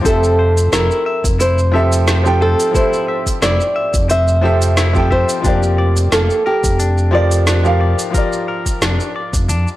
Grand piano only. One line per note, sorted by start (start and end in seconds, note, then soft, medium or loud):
0.01 1.69 F3 medium
0.01 1.70 C4 medium
0.01 1.70 G4 medium
0.07 1.72 E5 medium
0.07 1.71 A5 medium
1.72 2.20 F3 medium
1.72 2.21 C4 medium
1.72 2.21 G4 medium
1.72 2.22 A4 medium
1.72 2.22 E5 loud
2.23 2.69 F3 loud
2.23 2.70 C4 medium
2.23 2.71 G4 medium
2.23 2.71 A4 medium
2.23 2.72 G5 loud
2.71 4.38 F3 medium
2.71 4.39 C4 medium
2.71 4.40 G4 medium
2.77 4.41 A4 medium
2.77 4.42 E5 medium
4.41 4.90 F3 loud
4.41 4.90 C4 medium
4.41 4.91 G4 medium
4.41 4.91 A4 medium
4.41 4.92 E5 loud
4.93 5.39 F3 loud
4.93 5.40 C4 medium
4.93 5.41 G4 medium
4.93 5.41 A4 medium
4.93 5.42 G5 loud
5.40 7.08 F3 medium
5.40 7.09 F4 medium
5.40 7.10 G4 medium
5.46 7.11 A#3 medium
5.46 7.12 D5 medium
7.11 7.59 F3 loud
7.11 7.60 F4 medium
7.11 7.60 G4 medium
7.11 7.61 A#4 medium
7.11 7.61 D5 loud
7.63 8.09 F3 loud
7.63 8.10 F4 medium
7.63 8.11 G4 medium
7.63 8.11 A#4 medium
7.63 8.11 F5 loud
8.10 9.77 F3 medium
8.10 9.77 F4 medium
8.10 9.77 G4 medium
8.16 9.77 A#4 medium
8.16 9.77 D5 medium